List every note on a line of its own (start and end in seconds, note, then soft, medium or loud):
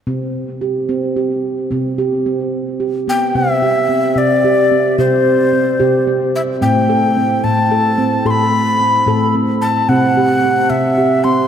0.07 1.68 C3 medium
0.07 0.61 C4 medium
0.61 0.88 G4 soft
0.89 1.16 C4 medium
1.16 1.71 G4 medium
1.71 3.32 C3 medium
1.71 1.98 C4 medium
1.98 2.26 G4 medium
2.26 2.81 C4 medium
2.80 3.07 G4 medium
3.08 3.35 B3 medium
3.08 3.37 G5 medium
3.35 4.13 C3 medium
3.35 3.63 C4 medium
3.35 4.19 E5 medium
3.62 3.90 G4 medium
3.89 4.44 C4 soft
4.16 4.95 C3 medium
4.16 4.99 D5 medium
4.44 4.72 G4 medium
4.72 4.99 C4 medium
4.99 5.77 C3 medium
4.99 5.54 G4 medium
4.99 6.04 C5 medium
5.53 5.81 C4 soft
5.80 6.59 C3 medium
5.80 6.08 G4 medium
6.07 6.60 C4 medium
6.36 6.42 E5 medium
6.61 7.40 A2 medium
6.61 6.89 C4 medium
6.61 7.45 G5 medium
6.89 7.17 A4 medium
7.17 7.71 C4 medium
7.44 8.22 A2 medium
7.44 8.28 A5 medium
7.71 7.99 A4 medium
7.98 8.26 C4 medium
8.25 9.03 A2 medium
8.25 8.80 A4 medium
8.25 8.32 C6 medium
8.31 9.35 B5 loud
8.81 9.08 C4 soft
9.07 9.85 A2 medium
9.07 9.35 A4 medium
9.35 9.88 C4 medium
9.62 9.90 A5 medium
9.89 10.67 C3 medium
9.89 10.17 C4 medium
9.89 10.71 F#5 loud
10.17 10.44 G4 medium
10.43 10.98 C4 medium
10.70 11.48 C3 medium
10.70 11.25 E5 medium
10.98 11.25 G4 medium
11.24 11.48 C4 medium
11.24 11.48 C6 medium